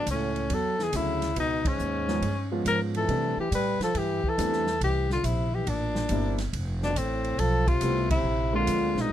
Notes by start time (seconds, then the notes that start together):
0.06 C#2 A2, kick, hi-hat pedal, ride
0.11 C#4
0.36 ride
0.50 E2 F#3, kick, ride
0.54 A4
0.79 E3 G#4, snare
0.91 D2 C#3 D3 F#3 A3 C#4 E4, kick, hi-hat pedal, ride
0.96 E4
1.22 snare, ride
1.35 C#2 B2, kick, ride
1.40 D#4
1.65 G#2 C#4, kick, ride
1.79 D#2, hi-hat pedal
2.08 F3 G#3 B3 C#4 D#4, snare
2.21 G2, kick, ride
2.52 F3 G#3 B3 C#4 F4
2.65 G#2 F3 A#4, kick, hi-hat pedal, ride
2.94 E3 A4, ride
3.08 C3 G3 A3 C4 D4 E4, kick, ride
3.37 E3 G4, muted upright bass stroke
3.51 A2 G3 B4, kick, hi-hat pedal, ride
3.79 F3, muted upright bass stroke, snare, ride
3.84 A4
3.94 G2 E3 G4, kick, ride
4.24 E3, muted upright bass stroke, kick
4.29 A4
4.38 E2 G3 A3 C4 D4 E4, kick, hi-hat pedal, ride
4.53 snare
4.67 snare
4.80 C2 E3 G4, kick, ride
5.10 D3 F4, snare
5.23 A#1 C3 E4, kick, hi-hat pedal, ride
5.53 E3 G4
5.66 A1 A#2 D4, kick, ride
5.95 snare
6.09 G1 G3 A#3 C4 D4 E4, kick, hi-hat pedal, ride
6.38 snare, ride
6.53 F1, kick, ride
6.81 B2 D4, snare
6.95 A1 A2 C4, kick, hi-hat pedal, ride
7.24 ride
7.39 B1 F3 A4, kick, ride
7.67 C3 F4, kick, ride
7.81 C2 G3 A3 B3 C4 E4, kick, hi-hat pedal, ride
8.10 C3 E4, kick, ride
8.23 A#1
8.53 D3 G#3 A#3 C4 D4 F4
8.67 F2, kick, hi-hat pedal, ride
8.81 D2
8.95 A#1 B2, snare
9.00 D#4
9.09 D#2